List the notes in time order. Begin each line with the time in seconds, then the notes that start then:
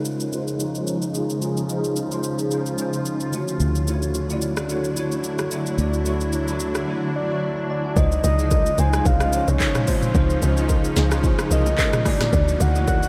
Already playing: C#3 F3 G#3 C#4 D#4 F4 A#4 C5 C#5
0.05 shaker
0.20 shaker
0.32 C#3 G#3 D#4 F4 C5, shaker
0.48 shaker
0.59 C#3 G#3 D#4 F4 C#5, shaker
0.75 shaker
0.87 shaker
1.02 shaker
1.13 C#3 G#3 D#4 F4 G#4, shaker
1.30 shaker
1.41 C#3 G#3 D#4 F4 G#4, shaker
1.57 shaker
1.68 C#3 G#3 D#4 F4 C5, shaker
1.84 shaker
1.96 shaker
2.10 C#3 G#3 D#4 F4 C5, shaker
2.23 shaker
2.39 shaker
2.50 C#3 G#3 D#4 F4, shaker
2.54 C5
2.66 shaker
2.77 C#3 G#3 D#4 F4 C5, shaker
2.93 shaker
3.06 shaker
3.20 shaker
3.31 D3 F#3 A3 D4 E4 F#4 C#5, shaker
3.48 shaker
3.60 D2, shaker
3.75 shaker
3.86 D3 A3 E4 F#4 C#5, shaker
4.02 shaker
4.14 shaker
4.28 D3 A3 E4 F#4 D5, shaker
4.42 shaker
4.57 cross-stick, shaker
4.68 D3 A3 E4 F#4 C#5, shaker
4.84 shaker
4.95 D3 A3 E4 F#4 C#5, shaker
5.12 shaker
5.24 shaker
5.39 cross-stick, shaker
5.50 D3 A3 D4 E4 F#4, shaker
5.54 C#5
5.66 shaker
5.77 D2 D3 A3 E4 F#4 D5, shaker
5.94 shaker
6.04 D3 A3 E4 F#4 C#5, shaker
6.21 shaker
6.33 shaker
6.46 D3 A3 E4 F#4 C#5, shaker
6.60 shaker
6.75 cross-stick, shaker
6.86 D3 A3 E4 F#4 C#5
7.16 D5
7.30 C#6
7.57 A5
7.70 D5 G#5
7.85 F#5
7.95 C#2 C#3 F3 G#3 C#4 D#4 F4 C5 D#5, kick, low conga, shaker
8.12 shaker
8.24 C#2 D#5, low bongo, low conga, shaker
8.37 C#3 G#3 D#4 F4 D#5, shaker
8.51 kick, high bongo, shaker
8.66 shaker
8.77 C#2 C#3 G#3 D#4 F4 C5 G#5, shaker
8.92 C#3 G#3 D#4 F4, cross-stick, shaker
8.96 C5
9.05 C2 F5, kick, low conga, shaker
9.20 cross-stick, shaker
9.31 C#3 G#3 D#4 F4 C#5, shaker
9.48 C2 C#5, low bongo, shaker
9.60 kick, clap, high bongo, shaker
9.75 cross-stick, mid tom, shaker
9.87 C5, kick, open hi-hat, low bongo, shaker
10.02 mid tom, shaker
10.13 C#2 C#3 G#3 A#3 D#4 F4, kick, low conga, shaker
10.17 C5
10.30 shaker
10.42 C#2, low bongo, low conga, shaker
10.56 C#3 G#3 D#4 F4 D#5, shaker
10.69 kick, high bongo, shaker
10.84 shaker
10.95 C#2 C#3 G#3 D#4 F4, snare, shaker
10.99 C5
11.10 C#3 G#3 D#4 F4 G#4, cross-stick, shaker
11.24 kick, low conga, shaker
11.39 cross-stick, shaker
11.49 C2 C#3 G#3 D#4 F4 A#4 D#5, shaker
11.66 low bongo, shaker
11.78 kick, clap, high bongo, shaker
11.93 cross-stick, mid tom, shaker
12.04 D3 F#3 A3 D4 E4 F#4 D5, kick, cross-stick, open hi-hat, low bongo, shaker
12.21 cross-stick, snare, mid tom, shaker
12.33 D2, kick, low conga, shaker
12.48 shaker
12.60 D2 F#5, low bongo, low conga, shaker
12.74 D3 A3 E4 F#4 C#5, shaker
12.88 F#5, kick, high bongo, shaker
13.03 shaker